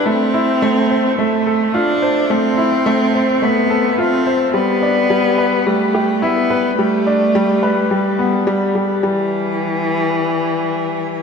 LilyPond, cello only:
\new Staff \with { instrumentName = "Cello" } { \time 4/4 \key g \mixolydian \tempo 4 = 107 c'2 a4 d'4 | c'2 b4 c'4 | b2 a4 b4 | a2 g4. r8 |
e1 | }